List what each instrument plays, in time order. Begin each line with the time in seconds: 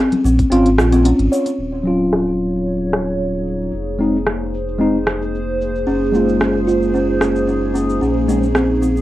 0.12 closed hi-hat, low conga
0.24 sub bass A#1, kalimba C4, muted conga, shaker
0.39 kick, closed hi-hat, high conga, shaker
0.50 sub bass G#1, tine electric piano C4 C#4 F4, kalimba C4, closed hi-hat, shaker
0.65 closed hi-hat, high conga
0.78 sub bass A#1, kalimba F4, cross-stick, shaker
0.92 kalimba C4, closed hi-hat, muted conga, shaker
1.04 kalimba C#4, closed hi-hat, high conga, shaker
1.19 sub bass G#1, closed hi-hat
1.32 kalimba C#5, shaker
1.46 closed hi-hat, muted conga, shaker
1.58 sub bass D#1
1.74 ambient pad A#3 D#4
1.83 tine electric piano F#3 C#4 F4, ambient pad C#5
2.11 ambient pad G#4, cross-stick
2.40 shaker
2.54 shaker
2.67 shaker
2.93 cross-stick, shaker
3.08 shaker
3.21 shaker
3.47 shaker
3.61 shaker
3.73 sub bass F1, shaker
3.85 ambient pad C5
3.99 tine electric piano G#3 C4 D#4, shaker
4.15 shaker
4.27 cross-stick, shaker
4.54 shaker
4.68 shaker
4.79 tine electric piano G#3 C4 D#4, shaker
5.07 cross-stick, shaker
5.22 shaker
5.35 shaker
5.61 shaker
5.76 shaker
5.87 sub bass F#1, kalimba C#4, shaker
6.12 tine electric piano G#3 A#3 F4, kalimba C#4, shaker
6.29 shaker
6.40 kalimba C#4, cross-stick, shaker
6.67 kalimba F4, shaker
6.82 shaker
6.94 kalimba C#4, shaker
7.21 kalimba C#4, cross-stick, shaker
7.36 shaker
7.47 kalimba C#4, shaker
7.74 kalimba C#4, shaker
7.90 shaker
8.01 sub bass A#1, kalimba C#4, shaker
8.28 tine electric piano G#3 C4 C#4, kalimba C4, shaker
8.43 shaker
8.55 kalimba C4, cross-stick, shaker
8.82 kalimba C4, shaker
8.97 shaker